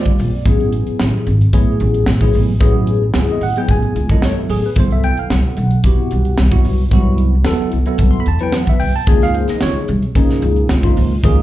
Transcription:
Already playing: G3 C4 F4 C5 D5
0.05 muted upright bass stroke, kick
0.19 A#1, open hi-hat
0.45 A1 F#3 B3 E4 G#4, kick, closed hi-hat
0.60 closed hi-hat
0.73 closed hi-hat
0.87 muted upright bass stroke, closed hi-hat
1.00 A1, snare, closed hi-hat
1.27 G#1, closed hi-hat
1.41 closed hi-hat
1.53 A2 F#3 B3 E4 G#4, kick, closed hi-hat
1.80 A1, closed hi-hat
1.94 closed hi-hat
2.06 A1, snare, closed hi-hat
2.21 F#3 B3 E4 G#4, kick
2.33 A1, open hi-hat
2.60 A1 F#3 B3 E4 G#4, kick, closed hi-hat
2.87 closed hi-hat
3.14 C#2 F#3 B3 E4 G#4, snare, closed hi-hat
3.28 D#5, muted upright bass stroke, closed hi-hat
3.41 A1 F#5, open hi-hat
3.56 F#3 B3 E4 G#4 G5, closed hi-hat
3.68 A1 G#5, kick, closed hi-hat
3.82 closed hi-hat
3.96 C#2, closed hi-hat
4.10 F#3 B3 E4 A4 D#5, kick, closed hi-hat
4.22 C#5, snare, closed hi-hat
4.37 E4, muted upright bass stroke
4.49 A1 G#4, open hi-hat
4.66 B4
4.76 C2 F#3 B3 E4 A4 C5, kick, closed hi-hat
4.91 E5, closed hi-hat
5.04 G5, closed hi-hat
5.17 F5, muted upright bass stroke, closed hi-hat
5.30 C2 F#5, snare, closed hi-hat
5.57 B1, closed hi-hat
5.71 closed hi-hat
5.84 C3 B3 E4 F#4 G4, kick, closed hi-hat
6.11 C2, closed hi-hat
6.25 closed hi-hat
6.38 C2, snare, closed hi-hat
6.51 F#3 B3 E4 F#4, kick
6.65 C2, open hi-hat
6.91 C2 F#3 B3 E4 F#4, kick, closed hi-hat
7.18 closed hi-hat
7.45 E2 F#3 B3 E4 A4, snare, closed hi-hat
7.58 muted upright bass stroke, closed hi-hat
7.72 C2, closed hi-hat
7.86 F#3 B3 E4 A4, closed hi-hat
7.98 C2, kick, closed hi-hat
8.11 C6, closed hi-hat
8.20 B5
8.26 E2 A5, closed hi-hat
8.39 F#3 B3 E4 B4 G5, closed hi-hat
8.52 F#5, snare, closed hi-hat
8.67 E5, muted upright bass stroke, kick
8.80 C2 G5, open hi-hat
8.96 A5
9.07 C#2 F3 A#3 D#4 G#4 G#5, kick, closed hi-hat
9.22 F5, snare, closed hi-hat
9.34 C5, closed hi-hat
9.48 D#5, muted upright bass stroke, snare, closed hi-hat
9.61 C#2 C#5, snare, closed hi-hat
9.88 C2, closed hi-hat
10.02 closed hi-hat
10.15 C#3 F3 A#3 D#4 G#4, kick, closed hi-hat
10.30 snare
10.42 C#2, closed hi-hat
10.56 closed hi-hat
10.69 C#2, snare, closed hi-hat
10.83 F3 A#3 D#4 F4, kick
10.97 C#2, open hi-hat
11.24 C#2 F3 A#3 D#4 G#4, kick, closed hi-hat

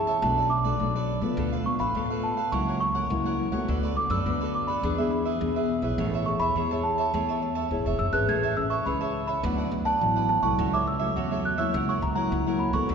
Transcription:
Already playing: E3 C#4 E4 G#4 A5
0.07 C#5 E5 A5
0.22 B1 B2 A3 D4 F#4 A4 B4 D5 A5
0.38 A4 B4 D5
0.50 D6, muted cavaquinho stroke
0.64 A3 D4 F#4 A4 B4 D5
0.80 B1 F#3 A3 D4 F#4
0.95 A4 B4 D5
1.21 C#2 A3 B3 F4 A4 B4 D5
1.37 D2 D3 D4 A4 B4 F5
1.52 A4 B4 F5
1.66 A3 B3 F4 C#6, muted cavaquinho stroke
1.79 A1 A4 B4 F5 B5
1.95 D2 A2 A3 B3 D4 F4 A4 B4 F5
2.10 A4 B4 F5
2.23 A5
2.37 A4 B4 F5
2.52 C#2 C#3 F#3 A#3 E4 A#4 C#5 F#5 C#6
2.68 A#4 C#5 F#5
2.80 C#6, muted cavaquinho stroke
2.95 A#4 C#5 F#5
3.10 C#2 C#3 F#3 A#3 E4
3.26 A#4 C#5 F#5
3.38 F#3 A#3 E4
3.52 C#2 A3 B3 F#4 A#4 C#5 F#5
3.68 D2 D3 D4 A4 B4 D5
3.83 A4 B4 D5
3.96 A3 B3 F#4 D6, muted cavaquinho stroke
4.10 F#2 A4 B4 D5 E6
4.25 D2 D3 A3 B3 D4 F#4 A4 B4 D5
4.41 A4 B4 D5
4.54 D6
4.67 A4 B4 D5 B5
4.83 E2 E3 B3 D4 G#4 B4 E5
4.98 B3 D4 G#4 B4 E5
5.11 B5, muted cavaquinho stroke
5.25 G#4 B4 E5
5.41 E2 B2 B3 D4 G#4
5.56 G#4 B4 E5
5.82 B1 E4 G#4 B4 C#5 E5
5.98 A1 A3 G#4 C#5 E5 A5
6.14 C#5 E5 A5
6.26 E4 G#4 C#5 C#6, muted cavaquinho stroke
6.39 E2 C#5 E5 A5 B5
6.56 E2 E3 E4 G#4 C#5 E5 A5
6.71 E4 G#4 C#5 E5 A5
6.83 A5
6.98 C#5 E5 A5
7.13 E2 A3 E4 G#4 C#5 E5 A5
7.29 C#5 E5 A5
7.42 muted cavaquinho stroke
7.55 C#5 E5 A5
7.71 C#1 E3 E4 G#4 C#5
7.86 E1 C#5 E5 A5
7.99 F#1 E6
8.13 G#1 C#4 G#4 B4 C#5 E5 A5 F#6
8.28 A1 A3 G#4 C#5 E5 A5 G#6
8.43 C#5 E5 A5
8.56 C#4 G#4 B4 E6, muted cavaquinho stroke
8.70 C#5 E5 A5 C#6
8.86 C#2 E3 C#4 G#4 B4 C#5 E5 A5 B5
9.01 C#5 E5 A5
9.27 C#5 E5 A5 B5
9.43 D2 D3 F#3 B3 D4 E4 B4 D5 F#5
9.58 B4 D5 F#5
9.72 D2, muted cavaquinho stroke
9.85 B4 D5 F#5 A5
10.01 A1 A2 F#3 B3 E4
10.16 B4 D5 F#5
10.29 A5
10.42 C2 F#3 A3 E4 B4 D5 F#5 C#6
10.58 C#2 C#3 F#4 A4 C#5 E5
10.73 A4 C#5 E5 D6
10.86 E6, muted cavaquinho stroke
10.99 F#3 A3 E4 A4 C#5 E5
11.16 E2 C#3 F#4 A4 C#5 E5
11.31 F#3 A3 E4 A4 C#5 E5
11.45 F#6
11.58 F#3 A#3 E4 A4 C#5 E5 E6
11.74 C#2 C#3 E4 A#4 C#5 F#5 E6
11.89 A#4 C#5 F#5 C#6
12.02 C#2 A#5, muted cavaquinho stroke
12.15 F#3 A#3 E4 A#4 C#5 F#5 A#5
12.31 C#2 C#3
12.46 F#3 A#3 E4 A#4 C#5 F#5
12.59 B5
12.73 C#2 B3 F#4 A4 A#4 C#5 F#5 C#6
12.89 D2 D3 D4 A4 B4 D5

